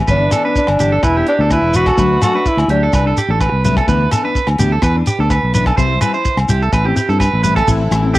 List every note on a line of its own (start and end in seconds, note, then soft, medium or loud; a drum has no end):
0.08 0.27 G1 medium
0.08 0.23 E3 medium
0.08 0.24 B3 medium
0.08 0.24 D4 medium
0.08 0.54 D4 medium
0.08 0.31 B4 medium
0.08 kick medium
0.08 shekere medium
0.31 0.45 E3 medium
0.31 0.45 B3 medium
0.31 0.44 D4 medium
0.31 0.44 A4 medium
0.31 cross-stick medium
0.31 closed hi-hat soft
0.31 low agogo medium
0.31 shekere medium
0.45 0.60 B3 soft
0.45 0.59 D4 soft
0.45 0.67 B4 medium
0.56 1.06 D4 medium
0.56 kick medium
0.56 shekere medium
0.67 0.77 G1 medium
0.67 cross-stick medium
0.67 low agogo medium
0.79 0.99 G1 medium
0.79 0.94 E3 medium
0.79 0.95 B3 soft
0.79 0.95 D4 medium
0.79 0.92 G4 medium
0.79 closed hi-hat soft
0.79 shekere medium
0.92 1.03 A4 medium
1.03 1.22 E1 medium
1.03 1.28 E4 medium
1.03 1.15 B4 medium
1.03 kick medium
1.03 cross-stick medium
1.03 low agogo medium
1.03 shekere medium
1.16 1.31 B3 soft
1.16 1.30 D4 soft
1.16 1.27 G4 medium
1.26 1.54 D4 medium
1.26 1.39 G4 medium
1.26 closed hi-hat soft
1.39 1.58 D2 medium
1.39 1.54 B3 soft
1.39 1.53 D4 soft
1.39 1.51 A4 medium
1.50 1.77 E4 medium
1.50 1.74 B4 medium
1.50 kick medium
1.50 cross-stick medium
1.50 low agogo medium
1.50 shekere medium
1.62 1.90 E1 medium
1.74 1.89 E3 medium
1.74 1.90 B3 medium
1.74 1.90 D4 medium
1.74 2.23 F#4 medium
1.74 1.87 B4 medium
1.74 closed hi-hat soft
1.74 shekere medium
1.86 1.98 A4 medium
1.86 kick medium
1.86 cross-stick medium
1.86 low agogo medium
1.97 2.17 D2 medium
1.97 2.13 F#3 medium
1.97 2.13 A3 medium
1.97 2.14 D4 medium
1.97 2.21 B4 medium
1.97 kick medium
1.97 shekere medium
2.22 2.34 F#3 soft
2.22 2.35 A3 medium
2.22 2.33 D4 medium
2.22 2.49 F#4 medium
2.22 2.34 A4 medium
2.22 cross-stick medium
2.22 closed hi-hat soft
2.22 low agogo medium
2.22 shekere medium
2.34 2.49 A3 soft
2.34 2.48 D4 soft
2.34 2.57 B4 medium
2.46 2.70 E4 medium
2.46 kick medium
2.46 shekere medium
2.57 2.67 D2 medium
2.57 cross-stick medium
2.57 low agogo medium
2.68 2.88 D2 medium
2.68 2.84 F#3 medium
2.68 2.85 A3 medium
2.68 3.14 D4 medium
2.68 2.85 D4 medium
2.68 2.82 G4 medium
2.68 closed hi-hat soft
2.83 2.93 A4 medium
2.93 3.12 C2 medium
2.93 3.06 B4 medium
2.93 kick medium
2.93 cross-stick medium
2.93 low agogo medium
2.93 shekere medium
3.05 3.20 A3 soft
3.05 3.19 D4 soft
3.05 3.17 A4 medium
3.17 3.29 G4 medium
3.17 closed hi-hat soft
3.17 shekere medium
3.28 3.48 A1 medium
3.28 3.44 A3 soft
3.28 3.43 D4 medium
3.28 3.41 A4 medium
3.40 3.64 B4 medium
3.40 kick medium
3.40 cross-stick medium
3.40 low agogo medium
3.40 shekere medium
3.52 3.80 C2 medium
3.64 3.79 F#3 medium
3.64 3.79 A3 medium
3.64 3.80 D4 medium
3.64 3.76 B4 medium
3.64 closed hi-hat soft
3.64 shekere medium
3.77 3.88 A4 medium
3.77 kick medium
3.77 cross-stick medium
3.77 low agogo medium
3.88 4.07 D2 medium
3.88 4.03 E3 medium
3.88 4.03 B3 medium
3.88 4.03 D4 medium
3.88 4.11 B4 medium
3.88 kick medium
3.88 shekere medium
4.11 4.25 B3 medium
4.11 4.23 D4 medium
4.11 4.24 A4 medium
4.11 muted steel-string acoustic guitar stroke medium
4.11 cross-stick medium
4.11 closed hi-hat soft
4.11 low agogo medium
4.11 shekere medium
4.24 4.39 B3 soft
4.24 4.38 D4 medium
4.24 4.47 B4 medium
4.35 kick medium
4.35 shekere medium
4.47 4.57 D2 medium
4.47 cross-stick medium
4.47 low agogo medium
4.59 4.78 D2 medium
4.59 4.74 E3 medium
4.59 4.74 B3 medium
4.59 4.75 D4 medium
4.59 4.71 G4 medium
4.59 closed hi-hat soft
4.59 shekere medium
4.72 4.83 A4 medium
4.82 5.01 E2 medium
4.82 4.95 B4 medium
4.82 kick medium
4.82 cross-stick medium
4.82 low agogo medium
4.82 shekere medium
4.95 5.09 D4 medium
5.06 5.19 G4 medium
5.06 closed hi-hat soft
5.06 shekere medium
5.19 5.38 D2 medium
5.19 5.34 B3 soft
5.19 5.33 D4 medium
5.19 5.31 A4 medium
5.30 5.53 B4 medium
5.30 kick medium
5.30 cross-stick medium
5.30 low agogo medium
5.30 shekere medium
5.43 5.71 B1 medium
5.53 5.68 E3 medium
5.53 5.69 B3 medium
5.53 5.70 D4 medium
5.53 5.66 B4 medium
5.53 closed hi-hat soft
5.53 shekere medium
5.66 5.77 A4 medium
5.66 kick medium
5.66 cross-stick medium
5.66 low agogo medium
5.77 5.97 C2 medium
5.77 5.92 G3 medium
5.77 5.93 C4 medium
5.77 5.93 E4 medium
5.77 6.00 C5 medium
5.77 kick medium
5.77 shekere medium
6.01 6.14 G3 medium
6.01 6.14 C4 medium
6.01 6.12 E4 medium
6.01 6.13 B4 medium
6.01 cross-stick medium
6.01 closed hi-hat soft
6.01 low agogo medium
6.01 shekere medium
6.13 6.28 E4 soft
6.13 6.37 C5 medium
6.13 muted steel-string acoustic guitar stroke soft
6.13 shekere soft
6.25 kick medium
6.25 shekere medium
6.37 6.46 C2 medium
6.37 cross-stick medium
6.37 low agogo medium
6.49 6.68 C2 medium
6.49 6.64 E4 medium
6.49 6.61 G4 medium
6.49 muted steel-string acoustic guitar stroke medium
6.49 closed hi-hat soft
6.49 shekere medium
6.62 6.73 A4 medium
6.62 shekere soft
6.72 6.91 A1 medium
6.72 6.85 B4 medium
6.72 kick medium
6.72 cross-stick medium
6.72 low agogo medium
6.72 shekere medium
6.84 7.00 C4 soft
6.84 6.98 E4 medium
6.84 6.95 G4 medium
6.96 7.08 G4 medium
6.96 closed hi-hat soft
6.96 shekere medium
7.08 7.27 G2 medium
7.08 7.23 C4 soft
7.08 7.22 E4 medium
7.08 7.20 A4 medium
7.08 shekere soft
7.20 7.42 B4 medium
7.20 kick medium
7.20 cross-stick medium
7.20 low agogo medium
7.20 shekere medium
7.33 7.61 A1 medium
7.43 7.58 G3 medium
7.43 7.59 C4 medium
7.43 7.59 E4 medium
7.43 7.55 B4 medium
7.43 closed hi-hat soft
7.43 shekere medium
7.56 7.67 A4 medium
7.56 kick medium
7.56 cross-stick medium
7.56 low agogo medium
7.56 shekere soft
7.67 7.86 A1 medium
7.67 7.82 E3 medium
7.67 7.82 C4 medium
7.67 8.19 C4 medium
7.67 8.19 E4 medium
7.67 7.82 E4 medium
7.67 8.19 A4 medium
7.67 kick medium
7.67 crash medium
7.67 shekere medium
7.91 8.19 A1 medium
7.91 8.03 E3 medium
7.91 8.03 C4 medium
7.91 8.01 E4 medium
7.91 cross-stick medium
7.91 closed hi-hat soft
7.91 low agogo medium
7.91 shekere medium
8.02 8.18 C4 soft
8.02 8.17 E4 soft
8.15 8.19 G4 medium
8.15 kick medium
8.15 shekere medium